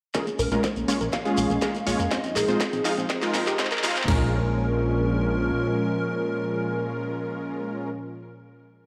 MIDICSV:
0, 0, Header, 1, 8, 480
1, 0, Start_track
1, 0, Key_signature, -5, "minor"
1, 0, Tempo, 491803
1, 142, Time_signature, 4, 2, 24, 8
1, 8650, End_track
2, 0, Start_track
2, 0, Title_t, "Digital synth lead"
2, 0, Program_c, 0, 84
2, 142, Note_on_c, 0, 68, 96
2, 250, Note_off_c, 0, 68, 0
2, 383, Note_on_c, 0, 70, 106
2, 829, Note_off_c, 0, 70, 0
2, 1102, Note_on_c, 0, 77, 108
2, 1326, Note_off_c, 0, 77, 0
2, 1342, Note_on_c, 0, 77, 114
2, 2061, Note_on_c, 0, 75, 111
2, 2075, Note_off_c, 0, 77, 0
2, 2299, Note_on_c, 0, 68, 92
2, 2314, Note_off_c, 0, 75, 0
2, 3741, Note_off_c, 0, 68, 0
2, 3982, Note_on_c, 0, 70, 105
2, 7706, Note_off_c, 0, 70, 0
2, 8650, End_track
3, 0, Start_track
3, 0, Title_t, "Supersaw synth"
3, 0, Program_c, 1, 81
3, 142, Note_on_c, 1, 56, 81
3, 142, Note_on_c, 1, 61, 74
3, 142, Note_on_c, 1, 65, 74
3, 142, Note_on_c, 1, 70, 90
3, 214, Note_off_c, 1, 56, 0
3, 214, Note_off_c, 1, 61, 0
3, 214, Note_off_c, 1, 65, 0
3, 214, Note_off_c, 1, 70, 0
3, 504, Note_on_c, 1, 56, 75
3, 504, Note_on_c, 1, 61, 70
3, 504, Note_on_c, 1, 65, 67
3, 504, Note_on_c, 1, 70, 83
3, 615, Note_off_c, 1, 56, 0
3, 615, Note_off_c, 1, 61, 0
3, 615, Note_off_c, 1, 65, 0
3, 615, Note_off_c, 1, 70, 0
3, 862, Note_on_c, 1, 56, 89
3, 862, Note_on_c, 1, 61, 81
3, 862, Note_on_c, 1, 65, 82
3, 862, Note_on_c, 1, 73, 97
3, 934, Note_off_c, 1, 56, 0
3, 934, Note_off_c, 1, 61, 0
3, 934, Note_off_c, 1, 65, 0
3, 934, Note_off_c, 1, 73, 0
3, 1223, Note_on_c, 1, 56, 94
3, 1223, Note_on_c, 1, 61, 87
3, 1223, Note_on_c, 1, 68, 103
3, 1224, Note_on_c, 1, 65, 88
3, 1553, Note_off_c, 1, 68, 0
3, 1554, Note_off_c, 1, 56, 0
3, 1554, Note_off_c, 1, 61, 0
3, 1554, Note_off_c, 1, 65, 0
3, 1581, Note_on_c, 1, 56, 96
3, 1581, Note_on_c, 1, 61, 85
3, 1581, Note_on_c, 1, 65, 85
3, 1582, Note_on_c, 1, 70, 102
3, 1653, Note_off_c, 1, 56, 0
3, 1653, Note_off_c, 1, 61, 0
3, 1653, Note_off_c, 1, 65, 0
3, 1654, Note_off_c, 1, 70, 0
3, 1820, Note_on_c, 1, 73, 105
3, 1821, Note_on_c, 1, 56, 100
3, 1821, Note_on_c, 1, 61, 91
3, 1821, Note_on_c, 1, 65, 89
3, 1936, Note_off_c, 1, 56, 0
3, 1936, Note_off_c, 1, 61, 0
3, 1936, Note_off_c, 1, 65, 0
3, 1936, Note_off_c, 1, 73, 0
3, 2062, Note_on_c, 1, 56, 80
3, 2062, Note_on_c, 1, 63, 76
3, 2062, Note_on_c, 1, 65, 76
3, 2062, Note_on_c, 1, 72, 90
3, 2134, Note_off_c, 1, 56, 0
3, 2134, Note_off_c, 1, 63, 0
3, 2134, Note_off_c, 1, 65, 0
3, 2134, Note_off_c, 1, 72, 0
3, 2424, Note_on_c, 1, 65, 70
3, 2424, Note_on_c, 1, 72, 85
3, 2425, Note_on_c, 1, 56, 75
3, 2425, Note_on_c, 1, 63, 68
3, 2535, Note_off_c, 1, 56, 0
3, 2535, Note_off_c, 1, 63, 0
3, 2535, Note_off_c, 1, 65, 0
3, 2535, Note_off_c, 1, 72, 0
3, 2782, Note_on_c, 1, 56, 87
3, 2782, Note_on_c, 1, 63, 84
3, 2782, Note_on_c, 1, 65, 86
3, 2782, Note_on_c, 1, 77, 101
3, 2854, Note_off_c, 1, 56, 0
3, 2854, Note_off_c, 1, 63, 0
3, 2854, Note_off_c, 1, 65, 0
3, 2854, Note_off_c, 1, 77, 0
3, 3144, Note_on_c, 1, 56, 97
3, 3144, Note_on_c, 1, 63, 93
3, 3144, Note_on_c, 1, 65, 88
3, 3144, Note_on_c, 1, 70, 105
3, 3474, Note_off_c, 1, 56, 0
3, 3474, Note_off_c, 1, 63, 0
3, 3474, Note_off_c, 1, 65, 0
3, 3474, Note_off_c, 1, 70, 0
3, 3503, Note_on_c, 1, 56, 97
3, 3503, Note_on_c, 1, 63, 90
3, 3503, Note_on_c, 1, 65, 87
3, 3503, Note_on_c, 1, 72, 105
3, 3574, Note_off_c, 1, 56, 0
3, 3574, Note_off_c, 1, 63, 0
3, 3574, Note_off_c, 1, 65, 0
3, 3574, Note_off_c, 1, 72, 0
3, 3744, Note_on_c, 1, 56, 102
3, 3744, Note_on_c, 1, 63, 93
3, 3744, Note_on_c, 1, 65, 95
3, 3744, Note_on_c, 1, 77, 112
3, 3858, Note_off_c, 1, 56, 0
3, 3858, Note_off_c, 1, 63, 0
3, 3858, Note_off_c, 1, 65, 0
3, 3858, Note_off_c, 1, 77, 0
3, 3983, Note_on_c, 1, 61, 80
3, 3983, Note_on_c, 1, 70, 93
3, 3984, Note_on_c, 1, 56, 85
3, 3984, Note_on_c, 1, 65, 79
3, 7707, Note_off_c, 1, 61, 0
3, 7707, Note_off_c, 1, 70, 0
3, 7708, Note_off_c, 1, 56, 0
3, 7708, Note_off_c, 1, 65, 0
3, 8650, End_track
4, 0, Start_track
4, 0, Title_t, "Synth pluck"
4, 0, Program_c, 2, 84
4, 142, Note_on_c, 2, 70, 97
4, 239, Note_off_c, 2, 70, 0
4, 265, Note_on_c, 2, 58, 62
4, 358, Note_off_c, 2, 58, 0
4, 383, Note_on_c, 2, 70, 88
4, 479, Note_off_c, 2, 70, 0
4, 506, Note_on_c, 2, 58, 63
4, 598, Note_off_c, 2, 58, 0
4, 624, Note_on_c, 2, 72, 93
4, 720, Note_off_c, 2, 72, 0
4, 745, Note_on_c, 2, 58, 61
4, 838, Note_off_c, 2, 58, 0
4, 863, Note_on_c, 2, 58, 60
4, 959, Note_off_c, 2, 58, 0
4, 985, Note_on_c, 2, 70, 88
4, 1078, Note_off_c, 2, 70, 0
4, 1103, Note_on_c, 2, 58, 62
4, 1199, Note_off_c, 2, 58, 0
4, 1226, Note_on_c, 2, 68, 94
4, 1318, Note_off_c, 2, 68, 0
4, 1343, Note_on_c, 2, 58, 62
4, 1439, Note_off_c, 2, 58, 0
4, 1466, Note_on_c, 2, 58, 61
4, 1558, Note_off_c, 2, 58, 0
4, 1582, Note_on_c, 2, 68, 96
4, 1679, Note_off_c, 2, 68, 0
4, 1705, Note_on_c, 2, 58, 65
4, 1798, Note_off_c, 2, 58, 0
4, 1824, Note_on_c, 2, 58, 63
4, 1920, Note_off_c, 2, 58, 0
4, 1946, Note_on_c, 2, 70, 91
4, 2038, Note_off_c, 2, 70, 0
4, 2065, Note_on_c, 2, 60, 66
4, 2160, Note_off_c, 2, 60, 0
4, 2186, Note_on_c, 2, 60, 66
4, 2279, Note_off_c, 2, 60, 0
4, 2304, Note_on_c, 2, 70, 96
4, 2400, Note_off_c, 2, 70, 0
4, 2426, Note_on_c, 2, 60, 67
4, 2518, Note_off_c, 2, 60, 0
4, 2543, Note_on_c, 2, 60, 64
4, 2639, Note_off_c, 2, 60, 0
4, 2666, Note_on_c, 2, 60, 66
4, 2759, Note_off_c, 2, 60, 0
4, 2782, Note_on_c, 2, 68, 89
4, 2879, Note_off_c, 2, 68, 0
4, 2905, Note_on_c, 2, 60, 64
4, 2998, Note_off_c, 2, 60, 0
4, 3022, Note_on_c, 2, 60, 66
4, 3119, Note_off_c, 2, 60, 0
4, 3145, Note_on_c, 2, 65, 92
4, 3238, Note_off_c, 2, 65, 0
4, 3264, Note_on_c, 2, 60, 66
4, 3360, Note_off_c, 2, 60, 0
4, 3385, Note_on_c, 2, 67, 85
4, 3478, Note_off_c, 2, 67, 0
4, 3503, Note_on_c, 2, 60, 66
4, 3599, Note_off_c, 2, 60, 0
4, 3625, Note_on_c, 2, 70, 93
4, 3718, Note_off_c, 2, 70, 0
4, 3743, Note_on_c, 2, 60, 65
4, 3839, Note_off_c, 2, 60, 0
4, 3865, Note_on_c, 2, 60, 67
4, 3958, Note_off_c, 2, 60, 0
4, 3982, Note_on_c, 2, 70, 92
4, 7706, Note_off_c, 2, 70, 0
4, 8650, End_track
5, 0, Start_track
5, 0, Title_t, "Analog synth pad"
5, 0, Program_c, 3, 89
5, 141, Note_on_c, 3, 58, 68
5, 142, Note_on_c, 3, 56, 79
5, 142, Note_on_c, 3, 61, 83
5, 2043, Note_off_c, 3, 58, 0
5, 2043, Note_off_c, 3, 61, 0
5, 2062, Note_on_c, 3, 63, 85
5, 2063, Note_on_c, 3, 53, 79
5, 3944, Note_off_c, 3, 56, 0
5, 3963, Note_off_c, 3, 53, 0
5, 3963, Note_off_c, 3, 63, 0
5, 3984, Note_on_c, 3, 46, 78
5, 3984, Note_on_c, 3, 56, 75
5, 3985, Note_on_c, 3, 53, 75
5, 3985, Note_on_c, 3, 61, 89
5, 7708, Note_off_c, 3, 46, 0
5, 7708, Note_off_c, 3, 56, 0
5, 7709, Note_off_c, 3, 53, 0
5, 7709, Note_off_c, 3, 61, 0
5, 8650, End_track
6, 0, Start_track
6, 0, Title_t, "Analog synth bass"
6, 0, Program_c, 4, 38
6, 382, Note_on_c, 4, 34, 89
6, 468, Note_off_c, 4, 34, 0
6, 504, Note_on_c, 4, 34, 81
6, 587, Note_off_c, 4, 34, 0
6, 745, Note_on_c, 4, 34, 73
6, 827, Note_off_c, 4, 34, 0
6, 985, Note_on_c, 4, 34, 81
6, 1067, Note_off_c, 4, 34, 0
6, 1343, Note_on_c, 4, 34, 97
6, 1428, Note_off_c, 4, 34, 0
6, 1464, Note_on_c, 4, 34, 81
6, 1547, Note_off_c, 4, 34, 0
6, 1823, Note_on_c, 4, 34, 94
6, 1908, Note_off_c, 4, 34, 0
6, 1945, Note_on_c, 4, 41, 81
6, 2028, Note_off_c, 4, 41, 0
6, 2303, Note_on_c, 4, 34, 94
6, 2388, Note_off_c, 4, 34, 0
6, 2425, Note_on_c, 4, 34, 84
6, 2507, Note_off_c, 4, 34, 0
6, 2665, Note_on_c, 4, 34, 76
6, 2748, Note_off_c, 4, 34, 0
6, 2905, Note_on_c, 4, 34, 83
6, 2987, Note_off_c, 4, 34, 0
6, 3263, Note_on_c, 4, 34, 100
6, 3348, Note_off_c, 4, 34, 0
6, 3384, Note_on_c, 4, 34, 83
6, 3467, Note_off_c, 4, 34, 0
6, 3742, Note_on_c, 4, 34, 96
6, 3828, Note_off_c, 4, 34, 0
6, 3865, Note_on_c, 4, 41, 79
6, 3947, Note_off_c, 4, 41, 0
6, 3983, Note_on_c, 4, 34, 98
6, 5384, Note_off_c, 4, 34, 0
6, 8650, End_track
7, 0, Start_track
7, 0, Title_t, "Shekere"
7, 141, Note_on_c, 9, 82, 46
7, 239, Note_off_c, 9, 82, 0
7, 265, Note_on_c, 9, 82, 27
7, 362, Note_off_c, 9, 82, 0
7, 383, Note_on_c, 9, 82, 88
7, 481, Note_off_c, 9, 82, 0
7, 505, Note_on_c, 9, 82, 37
7, 603, Note_off_c, 9, 82, 0
7, 623, Note_on_c, 9, 82, 54
7, 721, Note_off_c, 9, 82, 0
7, 744, Note_on_c, 9, 82, 25
7, 842, Note_off_c, 9, 82, 0
7, 870, Note_on_c, 9, 82, 91
7, 968, Note_off_c, 9, 82, 0
7, 987, Note_on_c, 9, 82, 38
7, 1084, Note_off_c, 9, 82, 0
7, 1098, Note_on_c, 9, 82, 46
7, 1196, Note_off_c, 9, 82, 0
7, 1229, Note_on_c, 9, 82, 28
7, 1327, Note_off_c, 9, 82, 0
7, 1338, Note_on_c, 9, 82, 97
7, 1436, Note_off_c, 9, 82, 0
7, 1468, Note_on_c, 9, 82, 42
7, 1566, Note_off_c, 9, 82, 0
7, 1578, Note_on_c, 9, 82, 56
7, 1676, Note_off_c, 9, 82, 0
7, 1711, Note_on_c, 9, 82, 27
7, 1809, Note_off_c, 9, 82, 0
7, 1831, Note_on_c, 9, 82, 94
7, 1929, Note_off_c, 9, 82, 0
7, 1946, Note_on_c, 9, 82, 43
7, 2044, Note_off_c, 9, 82, 0
7, 2070, Note_on_c, 9, 82, 54
7, 2167, Note_off_c, 9, 82, 0
7, 2188, Note_on_c, 9, 82, 29
7, 2286, Note_off_c, 9, 82, 0
7, 2307, Note_on_c, 9, 82, 98
7, 2405, Note_off_c, 9, 82, 0
7, 2429, Note_on_c, 9, 82, 38
7, 2526, Note_off_c, 9, 82, 0
7, 2546, Note_on_c, 9, 82, 55
7, 2643, Note_off_c, 9, 82, 0
7, 2665, Note_on_c, 9, 82, 31
7, 2762, Note_off_c, 9, 82, 0
7, 2784, Note_on_c, 9, 82, 97
7, 2881, Note_off_c, 9, 82, 0
7, 2908, Note_on_c, 9, 82, 39
7, 3005, Note_off_c, 9, 82, 0
7, 3024, Note_on_c, 9, 82, 54
7, 3122, Note_off_c, 9, 82, 0
7, 3144, Note_on_c, 9, 82, 29
7, 3242, Note_off_c, 9, 82, 0
7, 3261, Note_on_c, 9, 82, 96
7, 3358, Note_off_c, 9, 82, 0
7, 3387, Note_on_c, 9, 82, 46
7, 3484, Note_off_c, 9, 82, 0
7, 3500, Note_on_c, 9, 82, 50
7, 3598, Note_off_c, 9, 82, 0
7, 3630, Note_on_c, 9, 82, 28
7, 3728, Note_off_c, 9, 82, 0
7, 3743, Note_on_c, 9, 82, 93
7, 3841, Note_off_c, 9, 82, 0
7, 3870, Note_on_c, 9, 82, 43
7, 3968, Note_off_c, 9, 82, 0
7, 8650, End_track
8, 0, Start_track
8, 0, Title_t, "Drums"
8, 142, Note_on_c, 9, 39, 48
8, 142, Note_on_c, 9, 42, 66
8, 143, Note_on_c, 9, 36, 109
8, 239, Note_off_c, 9, 39, 0
8, 239, Note_off_c, 9, 42, 0
8, 240, Note_off_c, 9, 36, 0
8, 265, Note_on_c, 9, 42, 38
8, 362, Note_off_c, 9, 42, 0
8, 382, Note_on_c, 9, 46, 99
8, 480, Note_off_c, 9, 46, 0
8, 505, Note_on_c, 9, 42, 40
8, 602, Note_off_c, 9, 42, 0
8, 622, Note_on_c, 9, 39, 49
8, 622, Note_on_c, 9, 42, 64
8, 623, Note_on_c, 9, 36, 114
8, 720, Note_off_c, 9, 36, 0
8, 720, Note_off_c, 9, 39, 0
8, 720, Note_off_c, 9, 42, 0
8, 745, Note_on_c, 9, 42, 40
8, 842, Note_off_c, 9, 42, 0
8, 861, Note_on_c, 9, 46, 98
8, 959, Note_off_c, 9, 46, 0
8, 984, Note_on_c, 9, 42, 39
8, 1082, Note_off_c, 9, 42, 0
8, 1103, Note_on_c, 9, 36, 117
8, 1103, Note_on_c, 9, 39, 58
8, 1103, Note_on_c, 9, 42, 65
8, 1200, Note_off_c, 9, 39, 0
8, 1200, Note_off_c, 9, 42, 0
8, 1201, Note_off_c, 9, 36, 0
8, 1225, Note_on_c, 9, 42, 39
8, 1322, Note_off_c, 9, 42, 0
8, 1343, Note_on_c, 9, 46, 102
8, 1440, Note_off_c, 9, 46, 0
8, 1464, Note_on_c, 9, 42, 39
8, 1562, Note_off_c, 9, 42, 0
8, 1582, Note_on_c, 9, 39, 64
8, 1582, Note_on_c, 9, 42, 68
8, 1583, Note_on_c, 9, 36, 111
8, 1680, Note_off_c, 9, 39, 0
8, 1680, Note_off_c, 9, 42, 0
8, 1681, Note_off_c, 9, 36, 0
8, 1704, Note_on_c, 9, 42, 41
8, 1802, Note_off_c, 9, 42, 0
8, 1822, Note_on_c, 9, 46, 104
8, 1919, Note_off_c, 9, 46, 0
8, 1944, Note_on_c, 9, 42, 41
8, 2041, Note_off_c, 9, 42, 0
8, 2062, Note_on_c, 9, 39, 73
8, 2062, Note_on_c, 9, 42, 67
8, 2063, Note_on_c, 9, 36, 119
8, 2160, Note_off_c, 9, 39, 0
8, 2160, Note_off_c, 9, 42, 0
8, 2161, Note_off_c, 9, 36, 0
8, 2184, Note_on_c, 9, 42, 40
8, 2282, Note_off_c, 9, 42, 0
8, 2302, Note_on_c, 9, 39, 75
8, 2302, Note_on_c, 9, 46, 105
8, 2400, Note_off_c, 9, 39, 0
8, 2400, Note_off_c, 9, 46, 0
8, 2424, Note_on_c, 9, 42, 40
8, 2522, Note_off_c, 9, 42, 0
8, 2542, Note_on_c, 9, 39, 84
8, 2542, Note_on_c, 9, 42, 66
8, 2543, Note_on_c, 9, 36, 127
8, 2639, Note_off_c, 9, 39, 0
8, 2639, Note_off_c, 9, 42, 0
8, 2641, Note_off_c, 9, 36, 0
8, 2665, Note_on_c, 9, 42, 39
8, 2763, Note_off_c, 9, 42, 0
8, 2782, Note_on_c, 9, 39, 86
8, 2782, Note_on_c, 9, 46, 105
8, 2879, Note_off_c, 9, 39, 0
8, 2879, Note_off_c, 9, 46, 0
8, 2904, Note_on_c, 9, 42, 40
8, 3001, Note_off_c, 9, 42, 0
8, 3022, Note_on_c, 9, 39, 93
8, 3022, Note_on_c, 9, 42, 69
8, 3023, Note_on_c, 9, 36, 127
8, 3120, Note_off_c, 9, 39, 0
8, 3120, Note_off_c, 9, 42, 0
8, 3121, Note_off_c, 9, 36, 0
8, 3144, Note_on_c, 9, 39, 80
8, 3144, Note_on_c, 9, 42, 41
8, 3242, Note_off_c, 9, 39, 0
8, 3242, Note_off_c, 9, 42, 0
8, 3262, Note_on_c, 9, 39, 94
8, 3262, Note_on_c, 9, 46, 106
8, 3359, Note_off_c, 9, 39, 0
8, 3359, Note_off_c, 9, 46, 0
8, 3384, Note_on_c, 9, 39, 87
8, 3384, Note_on_c, 9, 42, 40
8, 3482, Note_off_c, 9, 39, 0
8, 3482, Note_off_c, 9, 42, 0
8, 3503, Note_on_c, 9, 39, 99
8, 3503, Note_on_c, 9, 42, 67
8, 3504, Note_on_c, 9, 36, 121
8, 3563, Note_off_c, 9, 39, 0
8, 3563, Note_on_c, 9, 39, 86
8, 3601, Note_off_c, 9, 36, 0
8, 3601, Note_off_c, 9, 42, 0
8, 3625, Note_off_c, 9, 39, 0
8, 3625, Note_on_c, 9, 39, 91
8, 3625, Note_on_c, 9, 42, 42
8, 3684, Note_off_c, 9, 39, 0
8, 3684, Note_on_c, 9, 39, 96
8, 3723, Note_off_c, 9, 42, 0
8, 3742, Note_off_c, 9, 39, 0
8, 3742, Note_on_c, 9, 39, 103
8, 3742, Note_on_c, 9, 46, 115
8, 3803, Note_off_c, 9, 39, 0
8, 3803, Note_on_c, 9, 39, 93
8, 3840, Note_off_c, 9, 46, 0
8, 3864, Note_off_c, 9, 39, 0
8, 3864, Note_on_c, 9, 39, 97
8, 3864, Note_on_c, 9, 42, 42
8, 3922, Note_off_c, 9, 39, 0
8, 3922, Note_on_c, 9, 39, 98
8, 3962, Note_off_c, 9, 42, 0
8, 3983, Note_on_c, 9, 38, 103
8, 3983, Note_on_c, 9, 43, 103
8, 3983, Note_on_c, 9, 49, 89
8, 4020, Note_off_c, 9, 39, 0
8, 4081, Note_off_c, 9, 38, 0
8, 4081, Note_off_c, 9, 43, 0
8, 4081, Note_off_c, 9, 49, 0
8, 8650, End_track
0, 0, End_of_file